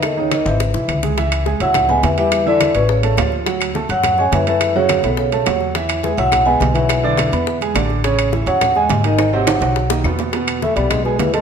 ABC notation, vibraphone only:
X:1
M:4/4
L:1/8
Q:1/4=210
K:G#phr
V:1 name="Vibraphone"
d c d e4 z | [K:C#m] z3 f2 g e e- | e =d2 B c3 z | z3 f2 g e e- |
e c2 A c3 z | z2 e f2 g2 e- | e4- e z3 | z3 f2 g2 d- |
d f4 z3 | [K:E] z8 |]